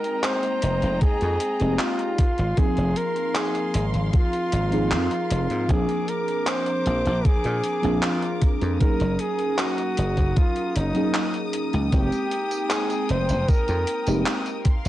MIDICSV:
0, 0, Header, 1, 7, 480
1, 0, Start_track
1, 0, Tempo, 779221
1, 1587, Time_signature, 4, 2, 24, 8
1, 9169, End_track
2, 0, Start_track
2, 0, Title_t, "String section"
2, 0, Program_c, 0, 48
2, 0, Note_on_c, 0, 56, 81
2, 0, Note_on_c, 0, 75, 75
2, 0, Note_on_c, 0, 79, 69
2, 0, Note_on_c, 0, 82, 89
2, 1331, Note_off_c, 0, 75, 0
2, 1331, Note_off_c, 0, 82, 0
2, 1332, Note_off_c, 0, 56, 0
2, 1332, Note_off_c, 0, 79, 0
2, 1344, Note_on_c, 0, 77, 74
2, 1345, Note_on_c, 0, 70, 80
2, 1346, Note_on_c, 0, 84, 89
2, 3484, Note_off_c, 0, 77, 0
2, 3485, Note_off_c, 0, 84, 0
2, 3506, Note_on_c, 0, 86, 88
2, 5407, Note_off_c, 0, 86, 0
2, 5425, Note_on_c, 0, 87, 86
2, 7322, Note_off_c, 0, 70, 0
2, 7351, Note_on_c, 0, 70, 79
2, 7351, Note_on_c, 0, 79, 72
2, 9002, Note_off_c, 0, 87, 0
2, 9012, Note_off_c, 0, 79, 0
2, 9025, Note_on_c, 0, 77, 74
2, 9026, Note_on_c, 0, 84, 93
2, 9169, Note_off_c, 0, 70, 0
2, 9169, Note_off_c, 0, 77, 0
2, 9169, Note_off_c, 0, 84, 0
2, 9169, End_track
3, 0, Start_track
3, 0, Title_t, "Flugelhorn"
3, 0, Program_c, 1, 56
3, 0, Note_on_c, 1, 70, 101
3, 148, Note_on_c, 1, 72, 112
3, 157, Note_off_c, 1, 70, 0
3, 625, Note_off_c, 1, 72, 0
3, 629, Note_on_c, 1, 68, 118
3, 1114, Note_on_c, 1, 65, 100
3, 1124, Note_off_c, 1, 68, 0
3, 1592, Note_on_c, 1, 68, 107
3, 1601, Note_off_c, 1, 65, 0
3, 1832, Note_on_c, 1, 70, 106
3, 1841, Note_off_c, 1, 68, 0
3, 2073, Note_on_c, 1, 68, 102
3, 2082, Note_off_c, 1, 70, 0
3, 2384, Note_off_c, 1, 68, 0
3, 2558, Note_on_c, 1, 65, 108
3, 3008, Note_off_c, 1, 65, 0
3, 3035, Note_on_c, 1, 65, 96
3, 3516, Note_on_c, 1, 68, 105
3, 3526, Note_off_c, 1, 65, 0
3, 3753, Note_on_c, 1, 70, 95
3, 3762, Note_off_c, 1, 68, 0
3, 3996, Note_on_c, 1, 72, 111
3, 4005, Note_off_c, 1, 70, 0
3, 4473, Note_on_c, 1, 68, 115
3, 4483, Note_off_c, 1, 72, 0
3, 4950, Note_off_c, 1, 68, 0
3, 4953, Note_on_c, 1, 65, 92
3, 5242, Note_off_c, 1, 65, 0
3, 5428, Note_on_c, 1, 70, 102
3, 5671, Note_on_c, 1, 68, 94
3, 5680, Note_off_c, 1, 70, 0
3, 5907, Note_on_c, 1, 66, 100
3, 5916, Note_off_c, 1, 68, 0
3, 6388, Note_on_c, 1, 65, 103
3, 6398, Note_off_c, 1, 66, 0
3, 6628, Note_on_c, 1, 63, 88
3, 6637, Note_off_c, 1, 65, 0
3, 7107, Note_off_c, 1, 63, 0
3, 7351, Note_on_c, 1, 67, 98
3, 7831, Note_on_c, 1, 68, 97
3, 7841, Note_off_c, 1, 67, 0
3, 8072, Note_on_c, 1, 72, 112
3, 8081, Note_off_c, 1, 68, 0
3, 8309, Note_on_c, 1, 70, 105
3, 8318, Note_off_c, 1, 72, 0
3, 8788, Note_off_c, 1, 70, 0
3, 9169, End_track
4, 0, Start_track
4, 0, Title_t, "FM electric piano"
4, 0, Program_c, 2, 5
4, 0, Control_c, 2, 64, 127
4, 0, Note_on_c, 2, 56, 78
4, 0, Note_on_c, 2, 58, 70
4, 0, Note_on_c, 2, 60, 70
4, 0, Note_on_c, 2, 63, 70
4, 0, Note_on_c, 2, 79, 86
4, 953, Note_off_c, 2, 56, 0
4, 955, Note_off_c, 2, 58, 0
4, 958, Note_off_c, 2, 60, 0
4, 959, Note_off_c, 2, 63, 0
4, 962, Note_off_c, 2, 79, 0
4, 986, Note_on_c, 2, 56, 77
4, 989, Note_on_c, 2, 58, 69
4, 991, Note_on_c, 2, 60, 72
4, 993, Note_on_c, 2, 63, 71
4, 995, Note_on_c, 2, 67, 83
4, 1332, Note_off_c, 2, 56, 0
4, 1333, Note_off_c, 2, 58, 0
4, 1334, Note_off_c, 2, 60, 0
4, 1335, Note_off_c, 2, 63, 0
4, 1336, Note_off_c, 2, 67, 0
4, 1356, Control_c, 2, 64, 0
4, 1476, Control_c, 2, 64, 127
4, 1581, Note_on_c, 2, 53, 82
4, 1585, Note_on_c, 2, 58, 73
4, 1588, Note_on_c, 2, 60, 72
4, 1594, Note_on_c, 2, 63, 70
4, 1600, Note_on_c, 2, 68, 83
4, 2876, Note_off_c, 2, 53, 0
4, 2878, Note_off_c, 2, 58, 0
4, 2879, Note_off_c, 2, 60, 0
4, 2882, Note_off_c, 2, 63, 0
4, 2885, Note_off_c, 2, 68, 0
4, 2899, Note_on_c, 2, 53, 72
4, 2903, Note_on_c, 2, 58, 68
4, 2907, Note_on_c, 2, 60, 70
4, 2913, Note_on_c, 2, 63, 71
4, 2917, Note_on_c, 2, 68, 86
4, 3474, Note_off_c, 2, 53, 0
4, 3476, Note_off_c, 2, 58, 0
4, 3478, Note_off_c, 2, 60, 0
4, 3481, Note_off_c, 2, 63, 0
4, 3483, Note_off_c, 2, 68, 0
4, 3498, Note_on_c, 2, 53, 80
4, 3502, Note_on_c, 2, 58, 69
4, 3506, Note_on_c, 2, 60, 68
4, 3510, Note_on_c, 2, 62, 71
4, 3516, Control_c, 2, 64, 0
4, 3517, Note_on_c, 2, 68, 87
4, 3614, Control_c, 2, 64, 127
4, 4795, Note_off_c, 2, 53, 0
4, 4797, Note_off_c, 2, 58, 0
4, 4798, Note_off_c, 2, 60, 0
4, 4800, Note_off_c, 2, 62, 0
4, 4804, Note_off_c, 2, 68, 0
4, 4816, Note_on_c, 2, 53, 73
4, 4821, Note_on_c, 2, 58, 67
4, 4826, Note_on_c, 2, 60, 70
4, 4829, Note_on_c, 2, 62, 72
4, 4835, Note_on_c, 2, 68, 86
4, 5392, Note_off_c, 2, 53, 0
4, 5395, Note_off_c, 2, 58, 0
4, 5398, Note_off_c, 2, 60, 0
4, 5399, Note_off_c, 2, 62, 0
4, 5402, Note_off_c, 2, 68, 0
4, 5417, Note_on_c, 2, 54, 78
4, 5423, Note_on_c, 2, 58, 67
4, 5426, Note_on_c, 2, 61, 71
4, 5432, Note_on_c, 2, 63, 71
4, 5434, Control_c, 2, 64, 0
4, 5435, Note_on_c, 2, 68, 87
4, 5551, Control_c, 2, 64, 127
4, 6714, Note_off_c, 2, 54, 0
4, 6717, Note_off_c, 2, 58, 0
4, 6718, Note_off_c, 2, 61, 0
4, 6722, Note_off_c, 2, 63, 0
4, 6723, Note_off_c, 2, 68, 0
4, 6739, Note_on_c, 2, 54, 77
4, 6745, Note_on_c, 2, 58, 69
4, 6749, Note_on_c, 2, 61, 68
4, 6753, Note_on_c, 2, 63, 71
4, 6759, Note_on_c, 2, 68, 82
4, 7314, Note_off_c, 2, 54, 0
4, 7317, Note_off_c, 2, 58, 0
4, 7319, Note_off_c, 2, 61, 0
4, 7321, Note_off_c, 2, 63, 0
4, 7324, Note_off_c, 2, 68, 0
4, 7338, Note_on_c, 2, 56, 77
4, 7344, Note_on_c, 2, 58, 67
4, 7348, Note_on_c, 2, 60, 69
4, 7351, Note_on_c, 2, 63, 69
4, 7356, Control_c, 2, 64, 0
4, 7358, Note_on_c, 2, 79, 87
4, 7452, Control_c, 2, 64, 127
4, 8634, Note_off_c, 2, 56, 0
4, 8637, Note_off_c, 2, 58, 0
4, 8639, Note_off_c, 2, 60, 0
4, 8641, Note_off_c, 2, 63, 0
4, 8644, Note_off_c, 2, 79, 0
4, 8666, Note_on_c, 2, 56, 76
4, 8667, Note_on_c, 2, 58, 69
4, 8669, Note_on_c, 2, 60, 70
4, 8673, Note_on_c, 2, 63, 68
4, 8674, Note_on_c, 2, 67, 82
4, 9011, Note_off_c, 2, 56, 0
4, 9012, Note_off_c, 2, 58, 0
4, 9013, Note_off_c, 2, 60, 0
4, 9015, Note_off_c, 2, 63, 0
4, 9015, Note_off_c, 2, 67, 0
4, 9035, Control_c, 2, 64, 0
4, 9155, Control_c, 2, 64, 127
4, 9169, End_track
5, 0, Start_track
5, 0, Title_t, "Slap bass"
5, 0, Program_c, 3, 36
5, 390, Note_on_c, 3, 29, 82
5, 486, Note_off_c, 3, 29, 0
5, 510, Note_on_c, 3, 29, 93
5, 605, Note_off_c, 3, 29, 0
5, 753, Note_on_c, 3, 41, 97
5, 846, Note_off_c, 3, 41, 0
5, 992, Note_on_c, 3, 29, 87
5, 1086, Note_off_c, 3, 29, 0
5, 1471, Note_on_c, 3, 32, 84
5, 1566, Note_off_c, 3, 32, 0
5, 1711, Note_on_c, 3, 29, 79
5, 1805, Note_off_c, 3, 29, 0
5, 2308, Note_on_c, 3, 32, 82
5, 2405, Note_off_c, 3, 32, 0
5, 2430, Note_on_c, 3, 32, 100
5, 2525, Note_off_c, 3, 32, 0
5, 2790, Note_on_c, 3, 32, 80
5, 3030, Note_on_c, 3, 41, 101
5, 3039, Note_off_c, 3, 32, 0
5, 3126, Note_off_c, 3, 41, 0
5, 3272, Note_on_c, 3, 29, 99
5, 3367, Note_off_c, 3, 29, 0
5, 3391, Note_on_c, 3, 44, 93
5, 3485, Note_off_c, 3, 44, 0
5, 3509, Note_on_c, 3, 34, 93
5, 3605, Note_off_c, 3, 34, 0
5, 4229, Note_on_c, 3, 34, 84
5, 4325, Note_off_c, 3, 34, 0
5, 4352, Note_on_c, 3, 34, 99
5, 4446, Note_off_c, 3, 34, 0
5, 4591, Note_on_c, 3, 46, 92
5, 4685, Note_off_c, 3, 46, 0
5, 4831, Note_on_c, 3, 34, 86
5, 4925, Note_off_c, 3, 34, 0
5, 5310, Note_on_c, 3, 41, 93
5, 5405, Note_off_c, 3, 41, 0
5, 5549, Note_on_c, 3, 30, 79
5, 5645, Note_off_c, 3, 30, 0
5, 6149, Note_on_c, 3, 30, 84
5, 6246, Note_off_c, 3, 30, 0
5, 6269, Note_on_c, 3, 30, 96
5, 6365, Note_off_c, 3, 30, 0
5, 6629, Note_on_c, 3, 30, 79
5, 6726, Note_off_c, 3, 30, 0
5, 7230, Note_on_c, 3, 37, 99
5, 7325, Note_off_c, 3, 37, 0
5, 7348, Note_on_c, 3, 29, 98
5, 7445, Note_off_c, 3, 29, 0
5, 8070, Note_on_c, 3, 29, 80
5, 8166, Note_off_c, 3, 29, 0
5, 8190, Note_on_c, 3, 29, 95
5, 8285, Note_off_c, 3, 29, 0
5, 8432, Note_on_c, 3, 41, 97
5, 8526, Note_off_c, 3, 41, 0
5, 8669, Note_on_c, 3, 29, 85
5, 8764, Note_off_c, 3, 29, 0
5, 9150, Note_on_c, 3, 32, 88
5, 9169, Note_off_c, 3, 32, 0
5, 9169, End_track
6, 0, Start_track
6, 0, Title_t, "Muted slap bass strokes"
6, 5428, Note_on_c, 9, 29, 44
6, 5490, Note_off_c, 9, 29, 0
6, 9169, End_track
7, 0, Start_track
7, 0, Title_t, "Drums"
7, 25, Note_on_c, 9, 42, 42
7, 87, Note_off_c, 9, 42, 0
7, 144, Note_on_c, 9, 39, 120
7, 144, Note_on_c, 9, 42, 65
7, 205, Note_off_c, 9, 39, 0
7, 205, Note_off_c, 9, 42, 0
7, 265, Note_on_c, 9, 42, 41
7, 326, Note_off_c, 9, 42, 0
7, 383, Note_on_c, 9, 42, 94
7, 444, Note_off_c, 9, 42, 0
7, 507, Note_on_c, 9, 42, 39
7, 568, Note_off_c, 9, 42, 0
7, 623, Note_on_c, 9, 42, 61
7, 627, Note_on_c, 9, 36, 112
7, 685, Note_off_c, 9, 42, 0
7, 689, Note_off_c, 9, 36, 0
7, 745, Note_on_c, 9, 42, 41
7, 807, Note_off_c, 9, 42, 0
7, 863, Note_on_c, 9, 42, 95
7, 925, Note_off_c, 9, 42, 0
7, 984, Note_on_c, 9, 42, 41
7, 1046, Note_off_c, 9, 42, 0
7, 1102, Note_on_c, 9, 39, 111
7, 1102, Note_on_c, 9, 42, 67
7, 1164, Note_off_c, 9, 39, 0
7, 1164, Note_off_c, 9, 42, 0
7, 1226, Note_on_c, 9, 42, 40
7, 1288, Note_off_c, 9, 42, 0
7, 1345, Note_on_c, 9, 42, 97
7, 1347, Note_on_c, 9, 36, 99
7, 1407, Note_off_c, 9, 42, 0
7, 1409, Note_off_c, 9, 36, 0
7, 1465, Note_on_c, 9, 42, 38
7, 1527, Note_off_c, 9, 42, 0
7, 1584, Note_on_c, 9, 42, 70
7, 1588, Note_on_c, 9, 36, 122
7, 1646, Note_off_c, 9, 42, 0
7, 1649, Note_off_c, 9, 36, 0
7, 1706, Note_on_c, 9, 42, 44
7, 1767, Note_off_c, 9, 42, 0
7, 1824, Note_on_c, 9, 42, 94
7, 1886, Note_off_c, 9, 42, 0
7, 1947, Note_on_c, 9, 42, 41
7, 2008, Note_off_c, 9, 42, 0
7, 2064, Note_on_c, 9, 39, 118
7, 2064, Note_on_c, 9, 42, 63
7, 2126, Note_off_c, 9, 39, 0
7, 2126, Note_off_c, 9, 42, 0
7, 2186, Note_on_c, 9, 42, 41
7, 2248, Note_off_c, 9, 42, 0
7, 2304, Note_on_c, 9, 42, 99
7, 2366, Note_off_c, 9, 42, 0
7, 2426, Note_on_c, 9, 42, 38
7, 2487, Note_off_c, 9, 42, 0
7, 2545, Note_on_c, 9, 42, 65
7, 2548, Note_on_c, 9, 36, 123
7, 2607, Note_off_c, 9, 42, 0
7, 2610, Note_off_c, 9, 36, 0
7, 2668, Note_on_c, 9, 42, 40
7, 2729, Note_off_c, 9, 42, 0
7, 2786, Note_on_c, 9, 42, 95
7, 2847, Note_off_c, 9, 42, 0
7, 2908, Note_on_c, 9, 42, 41
7, 2970, Note_off_c, 9, 42, 0
7, 3026, Note_on_c, 9, 39, 118
7, 3026, Note_on_c, 9, 42, 69
7, 3088, Note_off_c, 9, 39, 0
7, 3088, Note_off_c, 9, 42, 0
7, 3148, Note_on_c, 9, 42, 39
7, 3209, Note_off_c, 9, 42, 0
7, 3268, Note_on_c, 9, 42, 95
7, 3330, Note_off_c, 9, 42, 0
7, 3388, Note_on_c, 9, 42, 38
7, 3450, Note_off_c, 9, 42, 0
7, 3506, Note_on_c, 9, 42, 67
7, 3508, Note_on_c, 9, 36, 122
7, 3567, Note_off_c, 9, 42, 0
7, 3569, Note_off_c, 9, 36, 0
7, 3627, Note_on_c, 9, 42, 42
7, 3689, Note_off_c, 9, 42, 0
7, 3746, Note_on_c, 9, 42, 92
7, 3807, Note_off_c, 9, 42, 0
7, 3869, Note_on_c, 9, 42, 41
7, 3931, Note_off_c, 9, 42, 0
7, 3984, Note_on_c, 9, 39, 117
7, 3984, Note_on_c, 9, 42, 66
7, 4046, Note_off_c, 9, 39, 0
7, 4046, Note_off_c, 9, 42, 0
7, 4104, Note_on_c, 9, 42, 42
7, 4166, Note_off_c, 9, 42, 0
7, 4225, Note_on_c, 9, 42, 90
7, 4287, Note_off_c, 9, 42, 0
7, 4346, Note_on_c, 9, 42, 38
7, 4408, Note_off_c, 9, 42, 0
7, 4466, Note_on_c, 9, 42, 64
7, 4467, Note_on_c, 9, 36, 123
7, 4528, Note_off_c, 9, 42, 0
7, 4529, Note_off_c, 9, 36, 0
7, 4584, Note_on_c, 9, 42, 40
7, 4646, Note_off_c, 9, 42, 0
7, 4704, Note_on_c, 9, 42, 95
7, 4766, Note_off_c, 9, 42, 0
7, 4825, Note_on_c, 9, 42, 40
7, 4886, Note_off_c, 9, 42, 0
7, 4943, Note_on_c, 9, 39, 120
7, 4943, Note_on_c, 9, 42, 68
7, 5005, Note_off_c, 9, 39, 0
7, 5005, Note_off_c, 9, 42, 0
7, 5066, Note_on_c, 9, 42, 38
7, 5128, Note_off_c, 9, 42, 0
7, 5184, Note_on_c, 9, 42, 92
7, 5187, Note_on_c, 9, 36, 111
7, 5245, Note_off_c, 9, 42, 0
7, 5249, Note_off_c, 9, 36, 0
7, 5306, Note_on_c, 9, 42, 39
7, 5368, Note_off_c, 9, 42, 0
7, 5424, Note_on_c, 9, 42, 67
7, 5427, Note_on_c, 9, 36, 125
7, 5485, Note_off_c, 9, 42, 0
7, 5489, Note_off_c, 9, 36, 0
7, 5544, Note_on_c, 9, 42, 40
7, 5605, Note_off_c, 9, 42, 0
7, 5661, Note_on_c, 9, 42, 86
7, 5722, Note_off_c, 9, 42, 0
7, 5782, Note_on_c, 9, 42, 39
7, 5844, Note_off_c, 9, 42, 0
7, 5903, Note_on_c, 9, 39, 122
7, 5903, Note_on_c, 9, 42, 61
7, 5965, Note_off_c, 9, 39, 0
7, 5965, Note_off_c, 9, 42, 0
7, 6024, Note_on_c, 9, 42, 39
7, 6086, Note_off_c, 9, 42, 0
7, 6143, Note_on_c, 9, 42, 91
7, 6205, Note_off_c, 9, 42, 0
7, 6265, Note_on_c, 9, 42, 37
7, 6268, Note_on_c, 9, 36, 62
7, 6327, Note_off_c, 9, 42, 0
7, 6330, Note_off_c, 9, 36, 0
7, 6384, Note_on_c, 9, 42, 60
7, 6387, Note_on_c, 9, 36, 120
7, 6446, Note_off_c, 9, 42, 0
7, 6449, Note_off_c, 9, 36, 0
7, 6504, Note_on_c, 9, 42, 39
7, 6566, Note_off_c, 9, 42, 0
7, 6626, Note_on_c, 9, 42, 89
7, 6688, Note_off_c, 9, 42, 0
7, 6744, Note_on_c, 9, 42, 39
7, 6806, Note_off_c, 9, 42, 0
7, 6864, Note_on_c, 9, 39, 112
7, 6864, Note_on_c, 9, 42, 63
7, 6926, Note_off_c, 9, 39, 0
7, 6926, Note_off_c, 9, 42, 0
7, 6985, Note_on_c, 9, 42, 37
7, 7047, Note_off_c, 9, 42, 0
7, 7104, Note_on_c, 9, 42, 94
7, 7165, Note_off_c, 9, 42, 0
7, 7227, Note_on_c, 9, 42, 39
7, 7288, Note_off_c, 9, 42, 0
7, 7345, Note_on_c, 9, 42, 64
7, 7345, Note_on_c, 9, 54, 43
7, 7347, Note_on_c, 9, 36, 120
7, 7406, Note_off_c, 9, 42, 0
7, 7406, Note_off_c, 9, 54, 0
7, 7408, Note_off_c, 9, 36, 0
7, 7467, Note_on_c, 9, 42, 39
7, 7467, Note_on_c, 9, 54, 27
7, 7528, Note_off_c, 9, 42, 0
7, 7528, Note_off_c, 9, 54, 0
7, 7585, Note_on_c, 9, 42, 87
7, 7646, Note_off_c, 9, 42, 0
7, 7706, Note_on_c, 9, 42, 38
7, 7706, Note_on_c, 9, 54, 54
7, 7768, Note_off_c, 9, 42, 0
7, 7768, Note_off_c, 9, 54, 0
7, 7824, Note_on_c, 9, 39, 116
7, 7824, Note_on_c, 9, 42, 63
7, 7824, Note_on_c, 9, 54, 42
7, 7886, Note_off_c, 9, 39, 0
7, 7886, Note_off_c, 9, 42, 0
7, 7886, Note_off_c, 9, 54, 0
7, 7946, Note_on_c, 9, 42, 37
7, 7946, Note_on_c, 9, 54, 26
7, 8007, Note_off_c, 9, 42, 0
7, 8007, Note_off_c, 9, 54, 0
7, 8064, Note_on_c, 9, 42, 86
7, 8126, Note_off_c, 9, 42, 0
7, 8186, Note_on_c, 9, 42, 36
7, 8186, Note_on_c, 9, 54, 52
7, 8247, Note_off_c, 9, 42, 0
7, 8247, Note_off_c, 9, 54, 0
7, 8306, Note_on_c, 9, 42, 59
7, 8306, Note_on_c, 9, 54, 42
7, 8308, Note_on_c, 9, 36, 116
7, 8367, Note_off_c, 9, 42, 0
7, 8367, Note_off_c, 9, 54, 0
7, 8369, Note_off_c, 9, 36, 0
7, 8426, Note_on_c, 9, 42, 37
7, 8426, Note_on_c, 9, 54, 27
7, 8488, Note_off_c, 9, 42, 0
7, 8488, Note_off_c, 9, 54, 0
7, 8545, Note_on_c, 9, 42, 91
7, 8606, Note_off_c, 9, 42, 0
7, 8664, Note_on_c, 9, 42, 38
7, 8664, Note_on_c, 9, 54, 53
7, 8726, Note_off_c, 9, 42, 0
7, 8726, Note_off_c, 9, 54, 0
7, 8784, Note_on_c, 9, 39, 118
7, 8784, Note_on_c, 9, 42, 62
7, 8784, Note_on_c, 9, 54, 44
7, 8845, Note_off_c, 9, 39, 0
7, 8845, Note_off_c, 9, 42, 0
7, 8845, Note_off_c, 9, 54, 0
7, 8907, Note_on_c, 9, 42, 37
7, 8907, Note_on_c, 9, 54, 25
7, 8968, Note_off_c, 9, 42, 0
7, 8968, Note_off_c, 9, 54, 0
7, 9024, Note_on_c, 9, 42, 91
7, 9027, Note_on_c, 9, 36, 101
7, 9085, Note_off_c, 9, 42, 0
7, 9089, Note_off_c, 9, 36, 0
7, 9148, Note_on_c, 9, 42, 37
7, 9148, Note_on_c, 9, 54, 51
7, 9169, Note_off_c, 9, 42, 0
7, 9169, Note_off_c, 9, 54, 0
7, 9169, End_track
0, 0, End_of_file